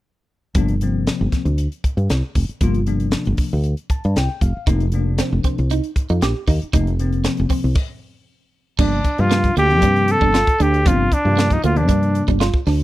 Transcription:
0.55 G1 C3 F3 A#3 D4, kick, closed hi-hat
0.68 closed hi-hat
0.81 C3 F3 A#3 C4, closed hi-hat
1.07 snare, closed hi-hat
1.21 G1
1.32 muted fretless electric bass stroke, kick, snare, closed hi-hat
1.45 D2, closed hi-hat
1.58 closed hi-hat
1.72 closed hi-hat
1.84 kick, closed hi-hat
1.97 G2, closed hi-hat
2.10 C2, snare, closed hi-hat
2.35 F1, kick, open hi-hat
2.49 muted fretless electric bass stroke, closed hi-hat
2.61 G1 C3 F3 A#3 F4, kick, closed hi-hat
2.74 closed hi-hat
2.86 C3 F3 A#3 D4, closed hi-hat
3.00 closed hi-hat
3.11 snare, closed hi-hat
3.25 G1, closed hi-hat
3.37 muted fretless electric bass stroke, kick, open hi-hat
3.53 D2
3.64 closed hi-hat
3.77 closed hi-hat
3.90 A5, kick, closed hi-hat
4.04 G2, closed hi-hat
4.16 C2 G5, snare, closed hi-hat
4.41 F1 F5, kick, closed hi-hat
4.57 muted fretless electric bass stroke
4.67 F1 C3 F3 A#3 D#4, kick, closed hi-hat
4.80 closed hi-hat
4.92 C3 F3 A#3 D4, closed hi-hat
5.18 C4, snare, closed hi-hat
5.32 F1
5.44 C4, kick, closed hi-hat
5.58 C2, closed hi-hat
5.70 D#4, closed hi-hat
5.84 closed hi-hat
5.96 kick, closed hi-hat
6.09 F2 D#4, closed hi-hat
6.22 A#1 G4, snare, closed hi-hat
6.47 D#2 D#4, kick, open hi-hat
6.62 muted fretless electric bass stroke, closed hi-hat
6.73 F1 C3 F3 A#3 D#4, kick, closed hi-hat
6.87 closed hi-hat
6.99 C3 F3 A#3 C4, closed hi-hat
7.13 closed hi-hat
7.24 C4, snare, closed hi-hat
7.37 F1, closed hi-hat
7.50 C4, muted fretless electric bass stroke, kick, open hi-hat
7.64 C2
7.75 kick, crash
8.79 G1 C3 F3 A#3 D4, kick, crash
9.05 kick, closed hi-hat
9.18 G2 C3 F3 A#3 D4 F4, closed hi-hat
9.31 A#3, snare, closed hi-hat
9.44 kick, closed hi-hat
9.57 D2 A#3 G4, closed hi-hat
9.70 C3 F3 A#3 C4, closed hi-hat
9.82 G2 D4, kick, closed hi-hat
9.96 closed hi-hat
10.08 A4, closed hi-hat
10.21 G1 D4, kick
10.34 F4, snare, closed hi-hat
10.47 kick, closed hi-hat
10.60 D2 D4 G4, closed hi-hat
10.74 closed hi-hat
10.85 G1 C3 F3 A#3 C4 D4 F4, kick, closed hi-hat
11.12 D4, kick, closed hi-hat
11.25 G2 C3 F3 A#3 F4
11.37 A#3, snare, closed hi-hat
11.50 D#4, kick, closed hi-hat
11.64 D2 A#3 F4, closed hi-hat
11.75 C3 F3 A#3 D4, closed hi-hat
11.89 G2 D4, kick, closed hi-hat
12.03 closed hi-hat
12.15 closed hi-hat
12.28 G1 D4, kick, closed hi-hat
12.40 F4, snare, closed hi-hat
12.54 kick
12.67 D2 D4, snare, open hi-hat
12.80 closed hi-hat

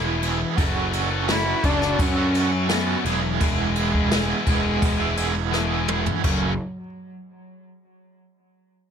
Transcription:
Already playing: E1 E3 G#3 B3 E4 G#4
0.21 G#3 B3 E4 G#4, crash
0.39 B3 E4 G#4, muted distorted electric guitar stroke
0.56 F#1 F#3 C#4 F#4 A4, kick, crash
0.93 F#3 C#4 F#4 A4, crash
1.10 C#4 F#4 A4
1.27 F#3 C#4 E4 F#4 A4, snare, crash
1.45 C#4 F#4 A4
1.63 F#1 F#3 C#4 D4 F#4 A4, kick, crash
1.81 C#4 F#4 A4, snare
1.99 F#2 C#4, kick, crash
2.16 C#4 F#4 A4
2.34 F#3 C#4 F#4 A4, crash
2.51 C#4 F#4 A4, muted distorted electric guitar stroke
2.69 F#3 B3 C#4 F#4 A4, snare, crash
3.04 E1 E3 F#3 G#3 B3 E4 G#4, crash
3.22 B3 E4 G#4, muted distorted electric guitar stroke
3.40 E3 G#3 B3 E4 G#4, kick, crash
3.76 G#3 B3 E4 G#4, crash
3.92 B3 E4 G#4, kick
4.11 E3 G#3 B3 E4 G#4, snare, crash
4.29 B3 E4 G#4
4.46 E1 G#3 B3 E4 G#4, kick, crash
4.64 B3 E4 G#4
4.82 E1, kick, crash
5.00 B3 E4 G#4
5.16 G#3 B3 E4 G#4, crash
5.34 B3 E4 G#4, muted distorted electric guitar stroke
5.52 E3 G#3 B3 E4 G#4, snare
5.88 G#3 B3 E4 G#4, mid tom
6.05 B3 E4 G#4, muted distorted electric guitar stroke, floor tom
6.23 F#1 F#2 C#3 F#3 A3 C#4, kick, crash

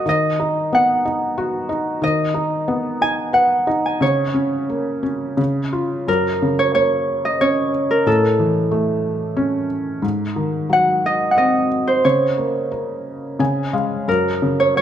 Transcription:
Already playing: F#5 G#5
0.06 D#3 D#5
0.40 D#4
0.73 B3 F#5
1.05 D#4
1.38 F#4
1.69 D#4
2.02 D#3 D#5
2.34 D#4
2.68 B3
3.01 D#4 G#5
3.33 B4 F#5
3.67 D#4
3.86 G#5
4.01 C#3 C#5
4.34 C#4
4.70 A#3
5.03 C#4
5.37 C#3
5.73 F4
6.08 F#2 A#4
6.42 C#3
6.59 C#5
6.75 A#3 C#5
7.25 D#5
7.41 C#4 C#5
7.91 A#4
8.06 A2 A4
8.39 E3
8.71 A3
9.37 C#4
10.02 G#2
10.36 D#3
10.69 F#3 F#5
11.06 D#5
11.31 F#5
11.37 C4 D#5
11.87 C5
12.05 C#3 C#5
12.38 A#3
12.71 A#4
13.39 C#3 G#5
13.73 G#3 F5
14.08 F#2 A#4
14.42 C#3
14.60 C#5
14.76 F#3 C#5

